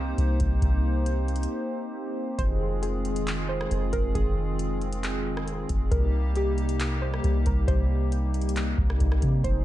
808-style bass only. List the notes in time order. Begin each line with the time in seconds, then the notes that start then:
Already playing: C2
0.18 C2
0.40 C2
0.62 C2
2.39 F1
3.71 F1
3.94 F1
4.15 F1
5.70 F1
5.92 C2
7.24 C2
7.46 C2
7.68 C2
8.78 C2
9.01 C2
9.23 C3
9.44 F1